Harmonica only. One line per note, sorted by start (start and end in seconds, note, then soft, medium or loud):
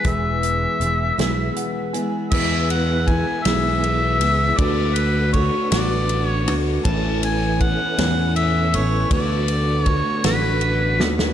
0.08 1.58 E5 medium
2.31 2.67 E5 medium
2.71 3.09 F#5 medium
3.08 3.46 G#5 medium
3.44 4.59 E5 loud
4.58 4.96 D5 medium
4.94 5.32 B4 medium
5.33 5.69 C#5 medium
5.71 6.26 D5 medium
6.26 6.53 C#5 medium
6.85 7.20 A5 loud
7.25 7.59 G#5 loud
7.61 8.32 F#5 loud
8.36 8.77 E5 loud
8.76 9.12 C#5 loud
9.13 9.85 D5 loud
9.85 10.21 C#5 loud
10.26 11.06 B4 loud